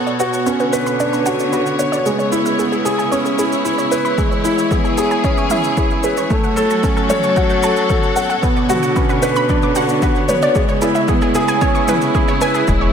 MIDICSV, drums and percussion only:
0, 0, Header, 1, 2, 480
1, 0, Start_track
1, 0, Tempo, 530973
1, 1861, Time_signature, 4, 2, 24, 8
1, 11687, End_track
2, 0, Start_track
2, 0, Title_t, "Drums"
2, 62, Note_on_c, 9, 82, 19
2, 152, Note_off_c, 9, 82, 0
2, 180, Note_on_c, 9, 82, 65
2, 270, Note_off_c, 9, 82, 0
2, 302, Note_on_c, 9, 82, 32
2, 392, Note_off_c, 9, 82, 0
2, 421, Note_on_c, 9, 82, 43
2, 512, Note_off_c, 9, 82, 0
2, 540, Note_on_c, 9, 82, 20
2, 631, Note_off_c, 9, 82, 0
2, 662, Note_on_c, 9, 82, 70
2, 752, Note_off_c, 9, 82, 0
2, 782, Note_on_c, 9, 82, 29
2, 873, Note_off_c, 9, 82, 0
2, 903, Note_on_c, 9, 82, 42
2, 993, Note_off_c, 9, 82, 0
2, 1023, Note_on_c, 9, 82, 20
2, 1113, Note_off_c, 9, 82, 0
2, 1140, Note_on_c, 9, 82, 74
2, 1231, Note_off_c, 9, 82, 0
2, 1261, Note_on_c, 9, 82, 30
2, 1351, Note_off_c, 9, 82, 0
2, 1381, Note_on_c, 9, 82, 41
2, 1472, Note_off_c, 9, 82, 0
2, 1502, Note_on_c, 9, 82, 20
2, 1592, Note_off_c, 9, 82, 0
2, 1622, Note_on_c, 9, 82, 65
2, 1712, Note_off_c, 9, 82, 0
2, 1744, Note_on_c, 9, 82, 29
2, 1834, Note_off_c, 9, 82, 0
2, 1863, Note_on_c, 9, 82, 39
2, 1953, Note_off_c, 9, 82, 0
2, 1984, Note_on_c, 9, 82, 19
2, 2074, Note_off_c, 9, 82, 0
2, 2102, Note_on_c, 9, 82, 70
2, 2192, Note_off_c, 9, 82, 0
2, 2222, Note_on_c, 9, 82, 30
2, 2312, Note_off_c, 9, 82, 0
2, 2343, Note_on_c, 9, 82, 40
2, 2434, Note_off_c, 9, 82, 0
2, 2463, Note_on_c, 9, 82, 20
2, 2554, Note_off_c, 9, 82, 0
2, 2584, Note_on_c, 9, 82, 73
2, 2674, Note_off_c, 9, 82, 0
2, 2704, Note_on_c, 9, 82, 30
2, 2795, Note_off_c, 9, 82, 0
2, 2823, Note_on_c, 9, 82, 41
2, 2913, Note_off_c, 9, 82, 0
2, 2942, Note_on_c, 9, 82, 19
2, 3032, Note_off_c, 9, 82, 0
2, 3063, Note_on_c, 9, 82, 72
2, 3153, Note_off_c, 9, 82, 0
2, 3185, Note_on_c, 9, 82, 30
2, 3275, Note_off_c, 9, 82, 0
2, 3302, Note_on_c, 9, 82, 43
2, 3393, Note_off_c, 9, 82, 0
2, 3421, Note_on_c, 9, 82, 20
2, 3512, Note_off_c, 9, 82, 0
2, 3543, Note_on_c, 9, 82, 64
2, 3633, Note_off_c, 9, 82, 0
2, 3662, Note_on_c, 9, 82, 29
2, 3752, Note_off_c, 9, 82, 0
2, 3779, Note_on_c, 9, 36, 103
2, 3781, Note_on_c, 9, 82, 41
2, 3869, Note_off_c, 9, 36, 0
2, 3871, Note_off_c, 9, 82, 0
2, 3903, Note_on_c, 9, 82, 18
2, 3993, Note_off_c, 9, 82, 0
2, 4021, Note_on_c, 9, 82, 64
2, 4111, Note_off_c, 9, 82, 0
2, 4142, Note_on_c, 9, 82, 29
2, 4233, Note_off_c, 9, 82, 0
2, 4258, Note_on_c, 9, 36, 98
2, 4261, Note_on_c, 9, 45, 60
2, 4261, Note_on_c, 9, 82, 38
2, 4349, Note_off_c, 9, 36, 0
2, 4351, Note_off_c, 9, 45, 0
2, 4351, Note_off_c, 9, 82, 0
2, 4382, Note_on_c, 9, 82, 20
2, 4472, Note_off_c, 9, 82, 0
2, 4499, Note_on_c, 9, 82, 63
2, 4589, Note_off_c, 9, 82, 0
2, 4619, Note_on_c, 9, 82, 27
2, 4709, Note_off_c, 9, 82, 0
2, 4738, Note_on_c, 9, 36, 93
2, 4738, Note_on_c, 9, 82, 39
2, 4829, Note_off_c, 9, 36, 0
2, 4829, Note_off_c, 9, 82, 0
2, 4857, Note_on_c, 9, 82, 19
2, 4948, Note_off_c, 9, 82, 0
2, 4975, Note_on_c, 9, 45, 58
2, 4975, Note_on_c, 9, 82, 68
2, 5065, Note_off_c, 9, 45, 0
2, 5065, Note_off_c, 9, 82, 0
2, 5097, Note_on_c, 9, 82, 28
2, 5188, Note_off_c, 9, 82, 0
2, 5218, Note_on_c, 9, 36, 97
2, 5218, Note_on_c, 9, 82, 42
2, 5308, Note_off_c, 9, 82, 0
2, 5309, Note_off_c, 9, 36, 0
2, 5338, Note_on_c, 9, 82, 21
2, 5428, Note_off_c, 9, 82, 0
2, 5455, Note_on_c, 9, 82, 65
2, 5546, Note_off_c, 9, 82, 0
2, 5578, Note_on_c, 9, 82, 31
2, 5669, Note_off_c, 9, 82, 0
2, 5698, Note_on_c, 9, 45, 60
2, 5698, Note_on_c, 9, 82, 40
2, 5699, Note_on_c, 9, 36, 105
2, 5788, Note_off_c, 9, 45, 0
2, 5788, Note_off_c, 9, 82, 0
2, 5789, Note_off_c, 9, 36, 0
2, 5819, Note_on_c, 9, 82, 19
2, 5909, Note_off_c, 9, 82, 0
2, 5939, Note_on_c, 9, 82, 69
2, 6029, Note_off_c, 9, 82, 0
2, 6059, Note_on_c, 9, 82, 31
2, 6150, Note_off_c, 9, 82, 0
2, 6179, Note_on_c, 9, 36, 99
2, 6179, Note_on_c, 9, 82, 39
2, 6269, Note_off_c, 9, 36, 0
2, 6270, Note_off_c, 9, 82, 0
2, 6299, Note_on_c, 9, 82, 19
2, 6389, Note_off_c, 9, 82, 0
2, 6418, Note_on_c, 9, 45, 62
2, 6418, Note_on_c, 9, 82, 68
2, 6509, Note_off_c, 9, 45, 0
2, 6509, Note_off_c, 9, 82, 0
2, 6538, Note_on_c, 9, 82, 27
2, 6629, Note_off_c, 9, 82, 0
2, 6658, Note_on_c, 9, 82, 38
2, 6659, Note_on_c, 9, 36, 94
2, 6748, Note_off_c, 9, 82, 0
2, 6750, Note_off_c, 9, 36, 0
2, 6777, Note_on_c, 9, 82, 19
2, 6868, Note_off_c, 9, 82, 0
2, 6897, Note_on_c, 9, 82, 68
2, 6987, Note_off_c, 9, 82, 0
2, 7018, Note_on_c, 9, 82, 30
2, 7109, Note_off_c, 9, 82, 0
2, 7138, Note_on_c, 9, 45, 61
2, 7138, Note_on_c, 9, 82, 38
2, 7140, Note_on_c, 9, 36, 97
2, 7228, Note_off_c, 9, 45, 0
2, 7228, Note_off_c, 9, 82, 0
2, 7230, Note_off_c, 9, 36, 0
2, 7260, Note_on_c, 9, 82, 20
2, 7350, Note_off_c, 9, 82, 0
2, 7379, Note_on_c, 9, 82, 64
2, 7469, Note_off_c, 9, 82, 0
2, 7501, Note_on_c, 9, 82, 29
2, 7592, Note_off_c, 9, 82, 0
2, 7620, Note_on_c, 9, 36, 108
2, 7622, Note_on_c, 9, 82, 40
2, 7711, Note_off_c, 9, 36, 0
2, 7712, Note_off_c, 9, 82, 0
2, 7741, Note_on_c, 9, 82, 20
2, 7832, Note_off_c, 9, 82, 0
2, 7861, Note_on_c, 9, 45, 63
2, 7861, Note_on_c, 9, 82, 70
2, 7952, Note_off_c, 9, 45, 0
2, 7952, Note_off_c, 9, 82, 0
2, 7982, Note_on_c, 9, 82, 31
2, 8072, Note_off_c, 9, 82, 0
2, 8101, Note_on_c, 9, 36, 98
2, 8101, Note_on_c, 9, 82, 40
2, 8191, Note_off_c, 9, 82, 0
2, 8192, Note_off_c, 9, 36, 0
2, 8221, Note_on_c, 9, 82, 21
2, 8311, Note_off_c, 9, 82, 0
2, 8340, Note_on_c, 9, 82, 68
2, 8430, Note_off_c, 9, 82, 0
2, 8459, Note_on_c, 9, 82, 28
2, 8550, Note_off_c, 9, 82, 0
2, 8580, Note_on_c, 9, 45, 66
2, 8580, Note_on_c, 9, 82, 40
2, 8582, Note_on_c, 9, 36, 94
2, 8671, Note_off_c, 9, 45, 0
2, 8671, Note_off_c, 9, 82, 0
2, 8672, Note_off_c, 9, 36, 0
2, 8699, Note_on_c, 9, 82, 20
2, 8789, Note_off_c, 9, 82, 0
2, 8819, Note_on_c, 9, 82, 68
2, 8909, Note_off_c, 9, 82, 0
2, 8938, Note_on_c, 9, 82, 30
2, 9028, Note_off_c, 9, 82, 0
2, 9060, Note_on_c, 9, 82, 38
2, 9062, Note_on_c, 9, 36, 101
2, 9151, Note_off_c, 9, 82, 0
2, 9152, Note_off_c, 9, 36, 0
2, 9179, Note_on_c, 9, 82, 19
2, 9269, Note_off_c, 9, 82, 0
2, 9300, Note_on_c, 9, 45, 56
2, 9300, Note_on_c, 9, 82, 67
2, 9390, Note_off_c, 9, 45, 0
2, 9390, Note_off_c, 9, 82, 0
2, 9421, Note_on_c, 9, 82, 29
2, 9511, Note_off_c, 9, 82, 0
2, 9539, Note_on_c, 9, 82, 40
2, 9541, Note_on_c, 9, 36, 108
2, 9630, Note_off_c, 9, 82, 0
2, 9631, Note_off_c, 9, 36, 0
2, 9659, Note_on_c, 9, 82, 19
2, 9749, Note_off_c, 9, 82, 0
2, 9778, Note_on_c, 9, 82, 71
2, 9869, Note_off_c, 9, 82, 0
2, 9898, Note_on_c, 9, 82, 29
2, 9989, Note_off_c, 9, 82, 0
2, 10018, Note_on_c, 9, 45, 65
2, 10018, Note_on_c, 9, 82, 38
2, 10021, Note_on_c, 9, 36, 100
2, 10109, Note_off_c, 9, 45, 0
2, 10109, Note_off_c, 9, 82, 0
2, 10112, Note_off_c, 9, 36, 0
2, 10137, Note_on_c, 9, 82, 20
2, 10228, Note_off_c, 9, 82, 0
2, 10257, Note_on_c, 9, 82, 66
2, 10348, Note_off_c, 9, 82, 0
2, 10378, Note_on_c, 9, 82, 29
2, 10469, Note_off_c, 9, 82, 0
2, 10499, Note_on_c, 9, 82, 40
2, 10501, Note_on_c, 9, 36, 96
2, 10589, Note_off_c, 9, 82, 0
2, 10591, Note_off_c, 9, 36, 0
2, 10621, Note_on_c, 9, 82, 19
2, 10711, Note_off_c, 9, 82, 0
2, 10739, Note_on_c, 9, 45, 69
2, 10739, Note_on_c, 9, 82, 70
2, 10830, Note_off_c, 9, 45, 0
2, 10830, Note_off_c, 9, 82, 0
2, 10861, Note_on_c, 9, 82, 30
2, 10952, Note_off_c, 9, 82, 0
2, 10981, Note_on_c, 9, 36, 102
2, 10981, Note_on_c, 9, 82, 41
2, 11071, Note_off_c, 9, 36, 0
2, 11071, Note_off_c, 9, 82, 0
2, 11100, Note_on_c, 9, 82, 20
2, 11190, Note_off_c, 9, 82, 0
2, 11221, Note_on_c, 9, 82, 72
2, 11311, Note_off_c, 9, 82, 0
2, 11340, Note_on_c, 9, 82, 31
2, 11431, Note_off_c, 9, 82, 0
2, 11460, Note_on_c, 9, 82, 42
2, 11462, Note_on_c, 9, 36, 106
2, 11550, Note_off_c, 9, 82, 0
2, 11552, Note_off_c, 9, 36, 0
2, 11687, End_track
0, 0, End_of_file